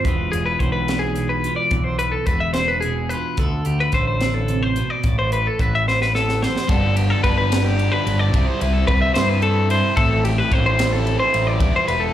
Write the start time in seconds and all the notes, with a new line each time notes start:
0.04 E1 E2 E3 G#3 D4 B4, kick, closed hi-hat
0.09 F4
0.32 E1 G#4, closed hi-hat
0.46 B4
0.59 B1 E3 C5, kick, closed hi-hat
0.72 B4
0.88 D4, snare, closed hi-hat
0.99 G#4
1.16 B2, closed hi-hat
1.29 B4
1.44 F4, closed hi-hat
1.56 D5
1.71 B1 E2, kick, closed hi-hat
1.84 C5
1.99 B4, closed hi-hat
2.12 A4
2.26 E1 E3 B4, kick, closed hi-hat
2.40 E5
2.54 C5, snare, closed hi-hat
2.58 D4
2.68 B4
2.81 G#4, closed hi-hat
2.85 B2
3.09 B4, closed hi-hat
3.14 F4
3.37 D2 D3 A4, kick, closed hi-hat
3.65 D2 G4, closed hi-hat
3.80 B4
3.92 A1 A3 C5, kick, closed hi-hat
4.07 C5
4.21 D3, snare, closed hi-hat
4.34 A4
4.48 C3, closed hi-hat
4.63 C5
4.76 B2, closed hi-hat
4.90 D5
5.04 A1 A2, kick, closed hi-hat
5.19 C5
5.32 B4, closed hi-hat
5.47 A4
5.59 A1 E3 B4, kick, closed hi-hat
5.75 E5
5.88 B3 C5, snare
6.02 B4, snare
6.15 E2 A4, snare
6.29 snare
6.42 G4 C5, snare
6.56 snare
6.68 G1 G2 D3 F3 B3 D4 A4, kick, ride
6.96 F3 B3 D4 G4, ride
7.10 A4
7.23 G1 D3 F3 B3 D4 B4, kick, ride
7.38 B4
7.50 G2 D3 F3 B3 D4, snare, ride
7.64 G4
7.79 ride
7.92 B4
8.05 G1 F3 B3 D4, ride
8.19 D5
8.32 C2 C3 G3 C4 E4, kick, ride
8.47 C5
8.60 C2 G3 C4 E4 B4, ride
8.73 A4
8.86 C2 C3 G3 C4 E4 B4, kick, ride
9.02 E5
9.14 G2 C3 G3 C4 E4 C5, snare, ride
9.29 B4
9.42 A4, ride
9.69 G3 C4 E4 C5, ride
9.95 A1 A2 E3 A3 C4 E4 A4, kick, ride
10.24 A3 C4 E4 G4, ride
10.38 B4
10.50 A1 E3 A3 C4 E4 C5, kick, ride
10.66 C5
10.77 A2 E3 A3 C4 E4, snare, ride
10.93 A4
11.07 ride
11.20 C5
11.34 A1 A3 C4 E4, ride
11.47 D5
11.59 E1 E3 G3 B3 E4, kick, ride
11.76 C5
11.87 E1 G3 B3 E4 B4, ride
12.00 A4